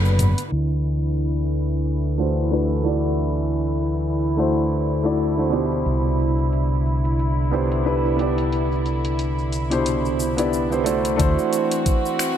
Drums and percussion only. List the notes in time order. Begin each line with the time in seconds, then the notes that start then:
0.05 shaker
0.19 closed hi-hat, mid tom, shaker
0.38 closed hi-hat, shaker
0.52 closed hi-hat
0.86 closed hi-hat
1.04 closed hi-hat
1.19 closed hi-hat
1.52 closed hi-hat
1.71 closed hi-hat
1.85 closed hi-hat
2.19 shaker
2.38 closed hi-hat, shaker
2.52 shaker
2.85 closed hi-hat, shaker
3.04 closed hi-hat
3.19 closed hi-hat, shaker
3.52 closed hi-hat, shaker
3.71 closed hi-hat, shaker
3.86 closed hi-hat, shaker
4.05 shaker
4.19 closed hi-hat, shaker
4.38 closed hi-hat, shaker
4.53 closed hi-hat, shaker
4.72 shaker
4.87 shaker
5.05 closed hi-hat, shaker
5.20 shaker
5.39 shaker
5.53 closed hi-hat, shaker
5.72 closed hi-hat, shaker
5.86 closed hi-hat, shaker
6.06 shaker
6.20 closed hi-hat, shaker
6.38 closed hi-hat, shaker
6.53 closed hi-hat, shaker
6.72 shaker
6.86 closed hi-hat, shaker
7.05 closed hi-hat, shaker
7.19 closed hi-hat, shaker
7.39 shaker
7.53 shaker
7.72 closed hi-hat, shaker
7.87 shaker
8.05 shaker
8.19 closed hi-hat, shaker
8.38 closed hi-hat, shaker
8.52 closed hi-hat, shaker
8.72 shaker
8.86 closed hi-hat, shaker
9.05 closed hi-hat, shaker
9.19 closed hi-hat, shaker
9.39 shaker
9.52 closed hi-hat, shaker
9.71 closed hi-hat, shaker
9.86 closed hi-hat, shaker
10.05 shaker
10.20 shaker
10.38 closed hi-hat, shaker
10.53 shaker
10.72 shaker
10.86 closed hi-hat, shaker
11.05 closed hi-hat, shaker
11.20 kick, closed hi-hat, shaker
11.39 shaker
11.53 closed hi-hat, shaker
11.71 closed hi-hat, shaker
11.86 kick, closed hi-hat, shaker
12.05 shaker
12.19 finger snap, closed hi-hat, shaker